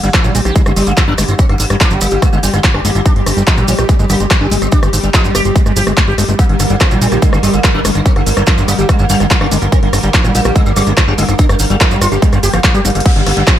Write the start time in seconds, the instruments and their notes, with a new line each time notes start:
Already playing: synth texture G3 G4
0.04 analog synth bass G1, sitar D3, acid bass G3, closed hi-hat, cabasa
0.13 acid bass F3, sitar C4, kick, cross-stick, clap, closed hi-hat, cabasa
0.24 analog synth bass A#1, sitar D3, acid bass G3, closed hi-hat, cabasa
0.35 analog synth bass A#1, sitar G3, acid bass G3, open hi-hat, cabasa
0.45 analog synth bass A#1, sitar D3, acid bass G4, cross-stick, closed hi-hat, cabasa
0.56 sitar D3, acid bass G#3, kick, closed hi-hat, cabasa
0.66 analog synth bass G1, sitar D3, acid bass G#3, cross-stick, cabasa
0.76 analog synth bass G1, acid bass G3, sitar G3, open hi-hat, cabasa
0.87 analog synth bass G1, sitar D3, acid bass G#3, closed hi-hat, cabasa
0.97 sitar D3, acid bass F3, kick, cross-stick, clap, closed hi-hat, cabasa
1.08 analog synth bass G1, sitar F3, acid bass D4
1.18 analog synth bass G1, sitar D3, acid bass G#3, cross-stick, open hi-hat, cabasa
1.28 analog synth bass G1, sitar D3, closed hi-hat, cabasa
1.39 sitar C4, kick, closed hi-hat, cabasa
1.49 analog synth bass G1, sitar D3, cross-stick, closed hi-hat
1.60 analog synth bass G#1, sitar D3, open hi-hat, cabasa
1.70 analog synth bass G1, sitar D3, acid bass G3, cross-stick, closed hi-hat, cabasa
1.81 acid bass F3, sitar D4, kick, clap, closed hi-hat, cabasa
1.90 analog synth bass G1, sitar D3, acid bass G3, closed hi-hat, cabasa
2.01 analog synth bass G1, acid bass G3, sitar A#3, cross-stick, open hi-hat, cabasa
2.11 analog synth bass G1, sitar D3, acid bass G4, closed hi-hat, cabasa
2.22 sitar D3, acid bass G#3, kick, cross-stick, closed hi-hat, cabasa
2.33 analog synth bass G1, sitar D3, acid bass G#3, cabasa
2.43 analog synth bass G1, sitar G3, acid bass G3, open hi-hat, cabasa
2.54 analog synth bass G1, sitar D3, acid bass G#3, cross-stick, closed hi-hat, cabasa
2.64 sitar D3, acid bass F3, kick, clap, closed hi-hat, cabasa
2.74 analog synth bass G1, sitar G3, acid bass D4, cross-stick
2.85 analog synth bass G1, sitar D3, acid bass G#3, open hi-hat, cabasa
2.95 analog synth bass G1, sitar D3, closed hi-hat, cabasa
3.06 sitar D4, kick, cross-stick, closed hi-hat, cabasa
3.16 analog synth bass G1, sitar G3, closed hi-hat
3.26 analog synth bass G1, sitar G3, cross-stick, open hi-hat, cabasa
3.37 analog synth bass G1, sitar G3, acid bass G3, closed hi-hat, cabasa
3.47 acid bass F3, sitar D#4, kick, clap, closed hi-hat, cabasa
3.58 analog synth bass A#1, sitar G3, acid bass G3, cross-stick, closed hi-hat, cabasa
3.68 analog synth bass A#1, acid bass G3, sitar C4, open hi-hat, cabasa
3.79 analog synth bass A#1, sitar G3, acid bass G4, cross-stick, closed hi-hat, cabasa
3.89 sitar G3, acid bass G#3, kick, closed hi-hat, cabasa
3.99 analog synth bass G1, sitar G3, acid bass G#3, cabasa
4.10 analog synth bass G1, acid bass G3, sitar A#3, cross-stick, open hi-hat, cabasa
4.20 analog synth bass G1, sitar G3, acid bass G#3, closed hi-hat, cabasa
4.31 acid bass F3, sitar G3, kick, cross-stick, clap, closed hi-hat, cabasa
4.41 analog synth bass G1, sitar G3, acid bass D4
4.51 analog synth bass G1, sitar G3, acid bass G#3, open hi-hat, cabasa
4.62 analog synth bass G1, sitar G3, cross-stick, closed hi-hat, cabasa
4.72 sitar D4, kick, closed hi-hat, cabasa
4.83 analog synth bass G1, sitar G3, cross-stick, closed hi-hat, cabasa
4.93 analog synth bass G#1, sitar G3, open hi-hat, cabasa
5.04 analog synth bass G1, acid bass G3, sitar G3, closed hi-hat, cabasa
5.14 acid bass F3, sitar D#4, kick, cross-stick, clap, closed hi-hat, cabasa
5.24 analog synth bass G1, acid bass G3, sitar G3, closed hi-hat, cabasa
5.35 analog synth bass G1, acid bass G3, sitar G4, cross-stick, open hi-hat, cabasa
5.45 analog synth bass G1, sitar G3, acid bass G4, closed hi-hat, cabasa
5.56 sitar G3, acid bass G#3, kick, closed hi-hat, cabasa
5.66 analog synth bass G1, sitar G3, acid bass G#3, cross-stick, cabasa
5.76 analog synth bass G1, acid bass F3, sitar G4, open hi-hat, cabasa
5.87 analog synth bass G1, sitar G3, acid bass G#3, cross-stick, closed hi-hat, cabasa
5.97 sitar G3, acid bass G#3, kick, clap, closed hi-hat, cabasa
6.08 analog synth bass G1, acid bass G3, sitar G4
6.18 analog synth bass G1, sitar G3, acid bass G#3, cross-stick, open hi-hat, cabasa
6.29 analog synth bass G1, sitar G3, acid bass G#3, closed hi-hat, cabasa
6.39 sitar A#3, synth texture A#4, kick, closed hi-hat, cabasa
6.49 analog synth bass G1, sitar D3, closed hi-hat
6.60 analog synth bass G1, sitar D3, cross-stick, open hi-hat, cabasa
6.70 analog synth bass G1, sitar D3, acid bass G3, closed hi-hat, cabasa
6.80 acid bass F3, sitar C4, kick, cross-stick, clap, closed hi-hat, cabasa
6.91 analog synth bass A#1, sitar D3, acid bass G3, closed hi-hat, cabasa
7.01 analog synth bass A#1, sitar G3, acid bass G3, open hi-hat, cabasa
7.12 analog synth bass A#1, sitar D3, acid bass G4, cross-stick, closed hi-hat, cabasa
7.22 sitar D3, acid bass G#3, kick, closed hi-hat, cabasa
7.33 analog synth bass G1, sitar D3, acid bass G3, cross-stick, cabasa
7.43 analog synth bass G1, sitar G3, acid bass G3, open hi-hat, cabasa
7.54 analog synth bass G1, sitar D3, acid bass G#3, closed hi-hat, cabasa
7.64 acid bass F3, kick, cross-stick, clap, closed hi-hat, cabasa
7.74 analog synth bass G1, sitar F3, acid bass D4
7.85 analog synth bass G1, sitar D3, acid bass G#3, cross-stick, open hi-hat, cabasa
7.95 analog synth bass G1, sitar D3, closed hi-hat, cabasa
8.06 sitar C4, kick, closed hi-hat, cabasa
8.16 analog synth bass G1, sitar D3, cross-stick, closed hi-hat
8.26 analog synth bass G#1, sitar D3, open hi-hat, cabasa
8.37 analog synth bass G1, sitar D3, acid bass G3, cross-stick, closed hi-hat, cabasa
8.46 acid bass F3, sitar D4, kick, clap, closed hi-hat, cabasa
8.58 analog synth bass G1, sitar D3, acid bass G3, closed hi-hat, cabasa
8.68 analog synth bass G1, acid bass G3, sitar A#3, cross-stick, open hi-hat, cabasa
8.79 analog synth bass G1, sitar D3, acid bass G4, closed hi-hat, cabasa
8.89 sitar D3, acid bass G#3, kick, cross-stick, closed hi-hat, cabasa
8.99 analog synth bass G1, sitar D3, acid bass G3, cabasa
9.09 analog synth bass G1, sitar G3, acid bass G3, open hi-hat, cabasa
9.20 analog synth bass G1, sitar D3, acid bass G#3, cross-stick, closed hi-hat, cabasa
9.31 sitar D3, acid bass F3, kick, clap, closed hi-hat, cabasa
9.41 analog synth bass G1, sitar G3, acid bass D4, cross-stick
9.51 analog synth bass G1, sitar D3, acid bass G#3, open hi-hat, cabasa
9.62 analog synth bass G1, sitar D3, closed hi-hat, cabasa
9.72 sitar C4, kick, cross-stick, closed hi-hat, cabasa
9.83 analog synth bass G1, sitar D3, closed hi-hat
9.93 analog synth bass G1, sitar D3, cross-stick, open hi-hat, cabasa
10.03 analog synth bass G1, sitar D3, acid bass G3, closed hi-hat, cabasa
10.14 acid bass F3, sitar D4, kick, clap, closed hi-hat, cabasa
10.24 analog synth bass A#1, sitar D3, acid bass G3, cross-stick, closed hi-hat, cabasa
10.35 analog synth bass A#1, acid bass G3, sitar A#3, open hi-hat, cabasa
10.45 analog synth bass A#1, sitar D3, acid bass G4, cross-stick, closed hi-hat, cabasa
10.56 sitar D3, acid bass G#3, kick, closed hi-hat, cabasa
10.66 analog synth bass G1, sitar D3, acid bass G3, cabasa
10.76 analog synth bass G1, acid bass G3, sitar G3, cross-stick, open hi-hat, cabasa
10.86 analog synth bass G1, sitar D3, acid bass G#3, closed hi-hat, cabasa
10.97 sitar D3, acid bass F3, kick, cross-stick, clap, closed hi-hat, cabasa
11.08 analog synth bass G1, sitar G3, acid bass D4
11.18 analog synth bass G1, sitar D3, acid bass G#3, open hi-hat, cabasa
11.29 analog synth bass G1, sitar D3, cross-stick, closed hi-hat, cabasa
11.39 sitar D4, kick, closed hi-hat, cabasa
11.49 analog synth bass G1, sitar G3, cross-stick, closed hi-hat, cabasa
11.59 analog synth bass G#1, sitar G3, open hi-hat, cabasa
11.70 analog synth bass G1, acid bass G3, sitar G3, closed hi-hat, cabasa
11.80 acid bass F3, sitar D#4, kick, cross-stick, clap, closed hi-hat, cabasa
11.91 analog synth bass G1, acid bass G3, sitar G3, closed hi-hat, cabasa
12.01 analog synth bass G1, acid bass G3, sitar F4, cross-stick, open hi-hat, cabasa
12.12 analog synth bass G1, sitar G3, acid bass G4, closed hi-hat, cabasa
12.22 sitar G3, acid bass G#3, kick, closed hi-hat, cabasa
12.33 analog synth bass G1, acid bass G3, sitar G3, cross-stick, closed hi-hat, cabasa
12.43 analog synth bass G1, acid bass G4, sitar G4, open hi-hat, cabasa
12.53 analog synth bass G1, acid bass F3, sitar G3, cross-stick, closed hi-hat, cabasa
12.64 acid bass F3, sitar G3, kick, clap, closed hi-hat, cabasa
12.74 analog synth bass G2, acid bass G4, sitar G4, closed hi-hat, cabasa
12.85 analog synth bass G#1, acid bass G3, sitar G3, cross-stick, closed hi-hat, cabasa
12.90 closed hi-hat
12.95 analog synth bass G1, sitar G3, closed hi-hat, cabasa
13.00 closed hi-hat
13.06 synth texture G3 G4, sitar A#3, analog synth pad G4, kick, crash, downlifter
13.16 analog synth bass G1, sitar D3, closed hi-hat
13.26 analog synth bass G1, sitar D3, cross-stick, open hi-hat
13.37 analog synth bass G1, sitar D3, acid bass G3, closed hi-hat
13.47 acid bass F3, sitar C4, kick, cross-stick, clap, closed hi-hat